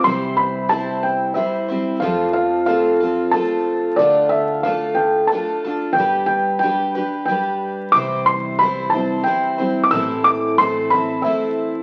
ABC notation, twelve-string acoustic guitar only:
X:1
M:3/4
L:1/8
Q:1/4=91
K:C
V:1 name="Twelve-string acoustic guitar"
[C,E,G,CEc]2 [G,CEc]2 [G,CEc] [G,CEc] | [F,A,CFA]2 [A,CFA] [CFA] [A,CFA]2 | [D,A,DFA]2 [A,DFA]2 [A,DFA] [DFA] | [G,DGB]2 [G,DGB] [DGB] [G,DGB]2 |
[C,E,G,CEc]2 [G,CEc] [G,CEc] [G,CEc] [G,CEc] | [A,,E,A,CEA]2 [A,CEA] [A,CEA] [A,CEA]2 |]